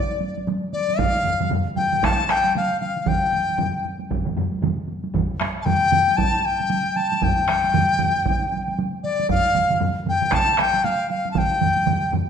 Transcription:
Already playing: dizi D5
0.21 taiko high
0.37 taiko high
0.47 taiko high
0.73 dizi D5, taiko high
0.89 taiko high
0.99 dizi F5, taiko, taiko low-mid, taiko mid, taiko high
1.25 taiko low-mid, taiko mid, taiko high
1.40 taiko low-mid, taiko mid, taiko high
1.50 taiko low-mid, taiko mid, taiko high
1.76 dizi G5, taiko low-mid, taiko mid, taiko high
1.92 taiko low-mid, taiko mid, taiko high
2.03 dizi A5, taiko rim, taiko, taiko high
2.29 dizi G5, taiko rim, taiko high
2.44 taiko high
2.55 dizi F5, taiko high
2.81 dizi F5, taiko high
2.97 taiko high
3.06 dizi G5, taiko, taiko low-mid, taiko mid, taiko high
3.33 taiko high
3.48 taiko high
3.58 taiko low-mid, taiko mid, taiko high
3.85 taiko high
4.00 taiko high
4.11 taiko, taiko low-mid, taiko mid, taiko high
4.26 taiko low-mid, taiko mid
4.36 taiko low-mid, taiko mid, taiko high
4.52 taiko high
4.62 taiko low-mid, taiko mid, taiko high
4.88 taiko high
5.04 taiko high
5.14 taiko, taiko low-mid, taiko mid, taiko high
5.40 taiko rim, taiko high
5.62 dizi G5 A5
5.66 taiko low-mid, taiko mid, taiko high
5.92 taiko low-mid, taiko mid, taiko high
6.08 taiko high
6.17 dizi A5, taiko, taiko high
6.39 dizi A5
6.45 dizi G5
6.60 taiko high
6.70 taiko high
6.96 dizi A5, taiko high
7.12 taiko high
7.22 dizi G5, taiko, taiko low-mid, taiko mid, taiko high
7.48 taiko rim, taiko high
7.64 taiko high
7.74 taiko low-mid, taiko mid, taiko high
7.99 taiko low-mid, taiko mid, taiko high
8.15 taiko high
8.26 taiko, taiko high
8.52 taiko high
8.68 taiko high
8.79 taiko high
9.04 dizi D5, taiko high
9.20 taiko high
9.29 dizi F5, taiko, taiko low-mid, taiko mid, taiko high
9.55 taiko low-mid, taiko mid, taiko high
9.70 taiko low-mid, taiko mid, taiko high
9.80 taiko low-mid, taiko mid, taiko high
10.06 dizi G5, taiko low-mid, taiko mid, taiko high
10.22 taiko low-mid, taiko mid
10.32 dizi A5, taiko rim, taiko, taiko high
10.54 dizi A5, taiko rim
10.58 dizi G5, taiko rim, taiko high
10.73 taiko high
10.84 dizi F5, taiko high
11.10 dizi F5, taiko high
11.25 taiko high
11.31 dizi A5, taiko low-mid
11.35 dizi G5, taiko, taiko mid, taiko high
11.61 taiko low-mid, taiko mid, taiko high
11.77 taiko high
11.87 taiko low-mid, taiko mid, taiko high
12.12 taiko low-mid, taiko mid, taiko high

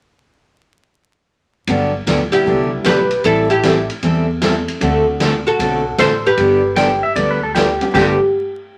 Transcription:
1.67 upright bass G1, steel-string acoustic guitar D3 F#3 B3 D4 G4, upright piano G3 B3 D4 F#4, kick, ride
2.07 upright bass D2, steel-string acoustic guitar D3 F#3 B3 D4 G4, kick, snare, hi-hat pedal, ride
2.32 upright piano G3 B3 D4 G4, oud E4 G4, ride
2.46 upright bass C2, steel-string acoustic guitar D3 F#3 B3 D4 G4, kick
2.84 upright bass B1, steel-string acoustic guitar D3 F#3 B3 D4 G4, oud G4 B4, kick, snare, hi-hat pedal, ride
3.11 ride
3.24 upright bass A1, steel-string acoustic guitar E3 G3 C4 E4 A4, oud E4 A4, kick, ride
3.50 oud E4 G4, ride
3.63 steel-string acoustic guitar E3 G3 C4 E4 A4, upright piano A3 C4 E4 G4, kick, snare, hi-hat pedal, ride
3.90 ride
4.03 upright bass E2, steel-string acoustic guitar E3 G3 C4 E4 A4, kick, ride
4.42 steel-string acoustic guitar E3 G3 C4 E4 A4, upright piano A3 C4 E4 A4, kick, snare, hi-hat pedal, ride
4.68 ride
4.81 upright bass D2, steel-string acoustic guitar D3 A3 C4 F#4 A4, upright piano A3 C4 D4 F#4, kick, ride
5.20 steel-string acoustic guitar D3 A3 C4 F#4 A4, kick, snare, hi-hat pedal, ride
5.47 oud F#4 A4
5.59 upright bass B1, steel-string acoustic guitar D3 A3 C4 F#4 A4, kick, ride
5.98 upright bass A1, steel-string acoustic guitar D3 A3 C4 F#4 A4, oud A4 C5, kick, snare, hi-hat pedal, ride
6.26 oud G4 B4
6.37 upright bass G1, steel-string acoustic guitar D3 G3 B3 D4 G4, kick, ride
6.76 steel-string acoustic guitar D3 G3 B3 D4 G4, electric slide guitar G5, kick, snare, hi-hat pedal, ride
7.03 electric slide guitar E5
7.16 upright bass D2, steel-string acoustic guitar D3 G3 B3 D4 G4, electric slide guitar D5, kick, ride
7.31 electric slide guitar B4
7.43 electric slide guitar A4
7.55 steel-string acoustic guitar D3 G3 B3 D4 G4, electric slide guitar G4, kick, snare, hi-hat pedal, ride
7.81 upright piano G3 B3 D4 G4, ride
7.93 upright bass G1, steel-string acoustic guitar G2 D3 G3 B3 D4 G4, upright piano G3 B3 D4 G4, electric slide guitar G4, oud G4, kick, snare, crash

